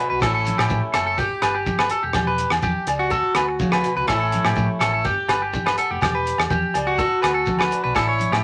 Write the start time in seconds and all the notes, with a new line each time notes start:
Already playing: F#4
0.00 B2
0.10 B1 B4
0.21 A1 A2 E3 A3 A4, kick, cross-stick, muted conga, low agogo, shekere
0.25 C#4 E4
0.34 A4
0.45 closed hi-hat, muted conga, high conga, shekere
0.58 A2 G4, cross-stick, low agogo
0.69 A2 E3, kick, high conga, shekere
0.94 F#1 A3 A4, cross-stick, closed hi-hat, muted conga, low agogo, shekere
1.06 A4
1.18 G1 G2 G4, kick, muted conga, shekere
1.42 G1 B4, cross-stick, closed hi-hat, low agogo, shekere
1.55 G4
1.66 kick, high conga, shekere
1.79 B4, cross-stick, low agogo
1.90 A4, muted steel-string acoustic guitar stroke, closed hi-hat, shekere
2.03 E1 G4
2.13 E1 E2 G4, kick, cross-stick, muted conga, high conga, low agogo, shekere
2.27 B4
2.38 closed hi-hat, muted conga, shekere
2.50 E2, cross-stick, low agogo
2.62 E2 E3 G4, kick, high conga, shekere
2.87 C#2 G3, closed hi-hat, muted conga, low agogo, shekere
2.99 F#4
3.10 D2 D3 F#4 A4, kick, muted conga, shekere
3.35 D2 B4, cross-stick, closed hi-hat, low agogo, shekere
3.49 muted clean electric guitar stroke
3.59 C#3, kick, high conga, shekere
3.72 B4, cross-stick, low agogo
3.83 B2, closed hi-hat, shekere
3.96 C#2 B4
4.07 A1 A2 E3 A3 C#4 E4 A4, kick, cross-stick, muted conga, low agogo, shekere
4.20 A4
4.32 closed hi-hat, muted conga, high conga, shekere
4.45 A2 G4, cross-stick, low agogo
4.56 A2 E3, kick, high conga, shekere
4.80 A1 A3 A4, cross-stick, closed hi-hat, low agogo, shekere
4.93 A4
5.05 G1 G2 G4, kick, muted conga, shekere
5.28 G1 B4, cross-stick, closed hi-hat, low agogo, shekere
5.42 G4
5.53 D3, kick, high conga, shekere
5.66 B4, cross-stick, low agogo
5.77 B3 A4, closed hi-hat, shekere
5.90 F1 G4
6.01 E1 E2 G4, kick, cross-stick, muted conga, high conga, low agogo, shekere
6.15 B4
6.26 closed hi-hat, muted conga, shekere
6.38 E2, cross-stick, low agogo
6.50 E2 E3 G4, kick, high conga, shekere
6.74 C#2 G3, closed hi-hat, muted conga, low agogo, shekere
6.87 F#4
6.98 D2 D3 F#4 A4, kick, muted conga, shekere
7.22 D2 B4, cross-stick, closed hi-hat, low agogo, shekere
7.34 A4
7.46 A3, kick, high conga, shekere
7.59 B4, cross-stick, low agogo
7.71 D4, closed hi-hat, shekere
7.84 B1 B4
7.95 A1 A2 E4 A4, kick, cross-stick, low agogo, shekere
8.09 C#5
8.19 closed hi-hat, muted conga, high conga, shekere
8.31 A2 G4, cross-stick, low agogo